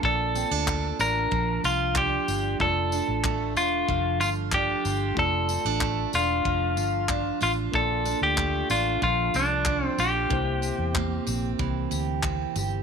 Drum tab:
TB |-x-x-x-x|-x-x-x-x|-x-x-x-x|-x-x-x-x|
CP |--x---x-|--x---x-|--x---x-|--x---x-|
BD |o-o-o-o-|o-o-o-o-|o-o-o-o-|o-o-o-o-|

TB |-x-x-x-x|
CP |--x---x-|
BD |o-o-o-o-|